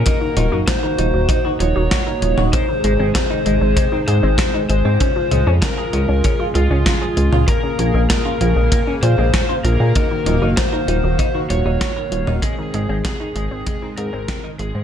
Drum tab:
HH |x-x-x-x-x-x-x-x-|x-x-x-x-x-x-x-x-|x-x-x-x-x-x-x-x-|x-x-x-x-x-x-x-x-|
SD |----o-------o---|----o-------o---|----o-------o---|----o-------o---|
T2 |--o------------o|----------------|--o------------o|----------------|
BD |o---o---o---o---|o---o---o---o---|o---o---o---o---|o---o---o---o---|

HH |x-x-x-x-x-x-x-x-|x-x-x-x-x-x-x-x-|
SD |----o-------o---|----o-------o---|
T2 |--o------------o|----------------|
BD |o---o---o---o---|o---o---o---o---|